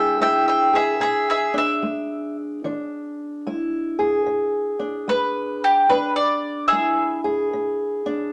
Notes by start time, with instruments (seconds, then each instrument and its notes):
Already playing: steel-string acoustic guitar E3 G#3 D4 E4 G#4, mandolin E5 G5
0.20 steel-string acoustic guitar G#3 E4, mandolin E5 G5
0.48 mandolin E5 G5
0.73 steel-string acoustic guitar G#4, mandolin G#4 E5
1.00 steel-string acoustic guitar B2, mandolin G#4 E5
1.30 mandolin G#4 E5
1.54 steel-string acoustic guitar D4
1.58 mandolin E5
1.82 steel-string acoustic guitar G#3
2.64 steel-string acoustic guitar E3 D4
3.47 steel-string acoustic guitar G#3 E4
3.99 steel-string acoustic guitar G#4
4.26 steel-string acoustic guitar B2
4.79 steel-string acoustic guitar D4
5.08 steel-string acoustic guitar G#3, mandolin B4
5.64 mandolin G4
5.89 steel-string acoustic guitar E3 D4, mandolin B4
6.16 mandolin D5
6.68 mandolin G#4 E5
6.72 steel-string acoustic guitar G#3 E4
7.24 steel-string acoustic guitar G#4
7.53 steel-string acoustic guitar B2
8.06 steel-string acoustic guitar D4